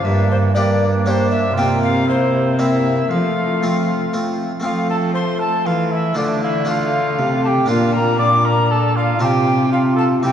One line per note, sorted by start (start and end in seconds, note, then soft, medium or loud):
0.04 1.53 G2 medium
0.04 0.54 A#3 medium
0.04 0.54 D4 medium
0.04 0.30 E5 loud
0.31 0.37 C5 loud
0.54 1.55 A#3 medium
0.54 0.92 A#3 medium
0.54 1.56 D4 medium
0.54 0.92 D4 medium
0.54 0.93 G4 medium
0.54 0.87 D5 loud
1.05 1.42 A#3 medium
1.05 1.43 D4 medium
1.05 1.43 G4 medium
1.05 1.10 C#5 loud
1.09 1.29 C5 loud
1.30 1.56 E5 loud
1.54 3.06 C3 medium
1.54 3.07 C3 medium
1.54 2.06 A#3 loud
1.54 2.04 A#3 medium
1.54 2.04 C4 medium
1.54 2.10 F4 medium
1.54 1.82 G5 loud
1.59 2.05 F4 medium
1.82 2.07 F5 loud
2.07 2.58 A#3 loud
2.07 2.57 E4 medium
2.07 2.61 C5 loud
2.58 3.11 A#3 medium
2.58 2.96 A#3 medium
2.58 2.96 C4 medium
2.58 3.12 E4 medium
2.58 2.96 E4 medium
2.58 3.11 E5 loud
3.09 4.41 F3 medium
3.09 4.38 A3 medium
3.09 4.39 F4 medium
3.09 4.13 F5 loud
3.63 3.99 A3 medium
3.63 4.00 C4 medium
3.63 4.00 F4 medium
4.13 4.50 A3 medium
4.13 4.50 C4 medium
4.13 4.51 F4 medium
4.60 5.67 F3 medium
4.60 5.61 A3 medium
4.60 5.11 A3 medium
4.60 5.61 C4 medium
4.60 6.12 F5 medium
4.60 4.67 G5 medium
4.64 5.62 F3 medium
4.64 4.88 F4 medium
4.64 4.87 F5 medium
4.89 5.13 A4 medium
4.89 4.95 A5 loud
5.14 5.65 A3 medium
5.14 5.41 C5 medium
5.14 5.40 C6 loud
5.39 5.68 A4 medium
5.39 5.67 A5 loud
5.66 6.16 E3 medium
5.66 6.13 E3 medium
5.66 6.15 A3 medium
5.66 5.94 F4 medium
5.66 5.91 F5 loud
5.92 6.18 E4 medium
5.92 6.17 E5 loud
6.14 7.20 D3 medium
6.14 7.14 D3 medium
6.14 6.64 A3 medium
6.14 6.66 A3 medium
6.14 6.65 D4 medium
6.14 6.42 D4 medium
6.14 6.66 F4 medium
6.14 6.24 D5 medium
6.43 6.68 E4 medium
6.43 6.49 F5 loud
6.48 6.68 E5 loud
6.65 7.15 A3 medium
6.65 7.70 A3 medium
6.65 7.65 D4 medium
6.65 7.65 F4 medium
6.65 7.42 F5 loud
6.70 7.43 F4 medium
7.18 7.68 C3 medium
7.18 7.65 C3 medium
7.43 7.69 G4 loud
7.43 7.69 G5 loud
7.43 7.48 A5 loud
7.66 9.17 A#2 medium
7.66 9.15 A#3 medium
7.66 9.16 D4 medium
7.66 8.19 D4 medium
7.66 9.16 F4 medium
7.66 7.93 F4 loud
7.66 7.94 F5 loud
7.93 8.18 A#4 loud
7.93 8.18 A#5 loud
8.19 9.23 D4 medium
8.19 8.30 D5 loud
8.19 8.46 D6 loud
8.45 8.69 A#4 loud
8.45 8.73 A#5 loud
8.71 8.98 A4 medium
8.71 8.96 A5 loud
8.97 9.23 F4 loud
8.97 9.19 F5 loud
9.19 10.21 C3 medium
9.19 10.19 C3 medium
9.19 10.19 C4 medium
9.19 10.20 F4 medium
9.19 9.71 F4 medium
9.19 9.71 G4 loud
9.19 9.25 A5 loud
9.24 9.70 G5 loud
9.71 10.23 F4 medium
9.71 9.96 F4 medium
9.71 9.78 F5 medium
9.96 10.08 A4 medium
9.96 10.04 A5 loud
10.22 10.32 C3 medium
10.22 10.32 C4 medium
10.22 10.32 E4 medium
10.22 10.32 G4 medium
10.22 10.32 G5 loud